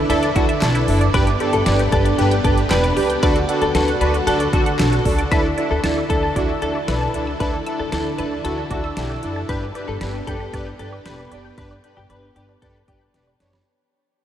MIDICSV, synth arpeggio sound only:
0, 0, Header, 1, 2, 480
1, 0, Start_track
1, 0, Key_signature, 2, "major"
1, 0, Tempo, 521739
1, 1050, Time_signature, 4, 2, 24, 8
1, 13107, End_track
2, 0, Start_track
2, 0, Title_t, "Synth arpeggio sound"
2, 0, Program_c, 0, 84
2, 89, Note_on_c, 0, 76, 103
2, 190, Note_off_c, 0, 76, 0
2, 209, Note_on_c, 0, 74, 85
2, 310, Note_off_c, 0, 74, 0
2, 328, Note_on_c, 0, 64, 87
2, 430, Note_off_c, 0, 64, 0
2, 449, Note_on_c, 0, 76, 88
2, 550, Note_off_c, 0, 76, 0
2, 689, Note_on_c, 0, 64, 83
2, 790, Note_off_c, 0, 64, 0
2, 929, Note_on_c, 0, 74, 84
2, 1030, Note_off_c, 0, 74, 0
2, 1049, Note_on_c, 0, 79, 107
2, 1150, Note_off_c, 0, 79, 0
2, 1169, Note_on_c, 0, 74, 84
2, 1270, Note_off_c, 0, 74, 0
2, 1289, Note_on_c, 0, 67, 84
2, 1390, Note_off_c, 0, 67, 0
2, 1529, Note_on_c, 0, 74, 100
2, 1630, Note_off_c, 0, 74, 0
2, 1649, Note_on_c, 0, 67, 84
2, 1750, Note_off_c, 0, 67, 0
2, 1889, Note_on_c, 0, 74, 80
2, 1990, Note_off_c, 0, 74, 0
2, 2009, Note_on_c, 0, 67, 102
2, 2110, Note_off_c, 0, 67, 0
2, 2129, Note_on_c, 0, 79, 90
2, 2230, Note_off_c, 0, 79, 0
2, 2249, Note_on_c, 0, 74, 89
2, 2350, Note_off_c, 0, 74, 0
2, 2489, Note_on_c, 0, 79, 98
2, 2590, Note_off_c, 0, 79, 0
2, 2609, Note_on_c, 0, 74, 83
2, 2710, Note_off_c, 0, 74, 0
2, 2728, Note_on_c, 0, 67, 84
2, 2829, Note_off_c, 0, 67, 0
2, 2849, Note_on_c, 0, 79, 83
2, 2950, Note_off_c, 0, 79, 0
2, 2969, Note_on_c, 0, 74, 108
2, 3070, Note_off_c, 0, 74, 0
2, 3088, Note_on_c, 0, 66, 81
2, 3190, Note_off_c, 0, 66, 0
2, 3208, Note_on_c, 0, 78, 91
2, 3310, Note_off_c, 0, 78, 0
2, 3448, Note_on_c, 0, 66, 94
2, 3550, Note_off_c, 0, 66, 0
2, 3568, Note_on_c, 0, 78, 86
2, 3669, Note_off_c, 0, 78, 0
2, 3688, Note_on_c, 0, 74, 89
2, 3790, Note_off_c, 0, 74, 0
2, 3808, Note_on_c, 0, 66, 77
2, 3909, Note_off_c, 0, 66, 0
2, 3929, Note_on_c, 0, 78, 108
2, 4030, Note_off_c, 0, 78, 0
2, 4049, Note_on_c, 0, 74, 85
2, 4150, Note_off_c, 0, 74, 0
2, 4169, Note_on_c, 0, 66, 86
2, 4270, Note_off_c, 0, 66, 0
2, 4289, Note_on_c, 0, 78, 88
2, 4390, Note_off_c, 0, 78, 0
2, 4530, Note_on_c, 0, 66, 81
2, 4630, Note_off_c, 0, 66, 0
2, 4770, Note_on_c, 0, 74, 83
2, 4871, Note_off_c, 0, 74, 0
2, 4889, Note_on_c, 0, 88, 107
2, 4990, Note_off_c, 0, 88, 0
2, 5130, Note_on_c, 0, 74, 87
2, 5231, Note_off_c, 0, 74, 0
2, 5370, Note_on_c, 0, 81, 97
2, 5471, Note_off_c, 0, 81, 0
2, 5491, Note_on_c, 0, 74, 77
2, 5591, Note_off_c, 0, 74, 0
2, 5610, Note_on_c, 0, 88, 94
2, 5711, Note_off_c, 0, 88, 0
2, 5730, Note_on_c, 0, 81, 83
2, 5831, Note_off_c, 0, 81, 0
2, 5851, Note_on_c, 0, 74, 98
2, 5951, Note_off_c, 0, 74, 0
2, 5972, Note_on_c, 0, 88, 86
2, 6072, Note_off_c, 0, 88, 0
2, 6091, Note_on_c, 0, 81, 86
2, 6191, Note_off_c, 0, 81, 0
2, 6211, Note_on_c, 0, 74, 85
2, 6311, Note_off_c, 0, 74, 0
2, 6332, Note_on_c, 0, 88, 99
2, 6432, Note_off_c, 0, 88, 0
2, 6452, Note_on_c, 0, 81, 81
2, 6552, Note_off_c, 0, 81, 0
2, 6571, Note_on_c, 0, 74, 83
2, 6671, Note_off_c, 0, 74, 0
2, 6691, Note_on_c, 0, 88, 84
2, 6791, Note_off_c, 0, 88, 0
2, 6932, Note_on_c, 0, 74, 77
2, 7032, Note_off_c, 0, 74, 0
2, 7052, Note_on_c, 0, 88, 89
2, 7152, Note_off_c, 0, 88, 0
2, 7171, Note_on_c, 0, 81, 84
2, 7271, Note_off_c, 0, 81, 0
2, 7291, Note_on_c, 0, 74, 96
2, 7391, Note_off_c, 0, 74, 0
2, 7531, Note_on_c, 0, 81, 94
2, 7631, Note_off_c, 0, 81, 0
2, 7651, Note_on_c, 0, 74, 77
2, 7751, Note_off_c, 0, 74, 0
2, 7771, Note_on_c, 0, 88, 106
2, 7871, Note_off_c, 0, 88, 0
2, 7892, Note_on_c, 0, 81, 87
2, 7991, Note_off_c, 0, 81, 0
2, 8011, Note_on_c, 0, 74, 87
2, 8111, Note_off_c, 0, 74, 0
2, 8132, Note_on_c, 0, 88, 89
2, 8232, Note_off_c, 0, 88, 0
2, 8373, Note_on_c, 0, 74, 79
2, 8472, Note_off_c, 0, 74, 0
2, 8612, Note_on_c, 0, 81, 83
2, 8712, Note_off_c, 0, 81, 0
2, 8731, Note_on_c, 0, 91, 107
2, 8831, Note_off_c, 0, 91, 0
2, 8971, Note_on_c, 0, 74, 85
2, 9071, Note_off_c, 0, 74, 0
2, 9211, Note_on_c, 0, 83, 99
2, 9311, Note_off_c, 0, 83, 0
2, 9331, Note_on_c, 0, 74, 78
2, 9431, Note_off_c, 0, 74, 0
2, 9451, Note_on_c, 0, 91, 91
2, 9551, Note_off_c, 0, 91, 0
2, 9571, Note_on_c, 0, 83, 84
2, 9671, Note_off_c, 0, 83, 0
2, 9693, Note_on_c, 0, 74, 97
2, 9792, Note_off_c, 0, 74, 0
2, 9812, Note_on_c, 0, 91, 85
2, 9912, Note_off_c, 0, 91, 0
2, 9931, Note_on_c, 0, 83, 87
2, 10031, Note_off_c, 0, 83, 0
2, 10052, Note_on_c, 0, 74, 81
2, 10152, Note_off_c, 0, 74, 0
2, 10171, Note_on_c, 0, 91, 98
2, 10271, Note_off_c, 0, 91, 0
2, 10291, Note_on_c, 0, 83, 83
2, 10391, Note_off_c, 0, 83, 0
2, 10411, Note_on_c, 0, 74, 82
2, 10511, Note_off_c, 0, 74, 0
2, 10531, Note_on_c, 0, 91, 85
2, 10631, Note_off_c, 0, 91, 0
2, 10771, Note_on_c, 0, 74, 77
2, 10871, Note_off_c, 0, 74, 0
2, 10891, Note_on_c, 0, 91, 90
2, 10991, Note_off_c, 0, 91, 0
2, 11011, Note_on_c, 0, 83, 82
2, 11111, Note_off_c, 0, 83, 0
2, 11131, Note_on_c, 0, 74, 91
2, 11231, Note_off_c, 0, 74, 0
2, 11371, Note_on_c, 0, 83, 90
2, 11471, Note_off_c, 0, 83, 0
2, 11491, Note_on_c, 0, 74, 75
2, 11591, Note_off_c, 0, 74, 0
2, 11611, Note_on_c, 0, 91, 101
2, 11711, Note_off_c, 0, 91, 0
2, 11732, Note_on_c, 0, 83, 86
2, 11832, Note_off_c, 0, 83, 0
2, 11851, Note_on_c, 0, 74, 85
2, 11951, Note_off_c, 0, 74, 0
2, 11972, Note_on_c, 0, 91, 89
2, 12072, Note_off_c, 0, 91, 0
2, 12211, Note_on_c, 0, 74, 76
2, 12311, Note_off_c, 0, 74, 0
2, 12451, Note_on_c, 0, 83, 82
2, 12551, Note_off_c, 0, 83, 0
2, 13107, End_track
0, 0, End_of_file